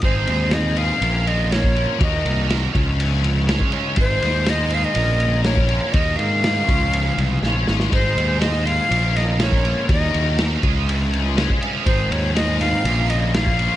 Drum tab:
RD |x-x-x-x-x-x-x-x-|x-x-x-x-x-x-x-x-|x-x-x-x-x-x-x-x-|x-x-x-x-x-x-----|
SD |----o-------o---|----o-------o---|--o-o-------o---|----o-------o-oo|
BD |o------------o--|o-----o------o--|o------------o--|o-----o---------|

RD |x-x-x-x-x-x-x-x-|x-x-x-x-x-x-x-x-|x-x-x-x-x-x-x-x-|
SD |----o-----o-o---|----o-------o---|----o-o-----o---|
BD |o------------o--|o-----o------o--|o------------o--|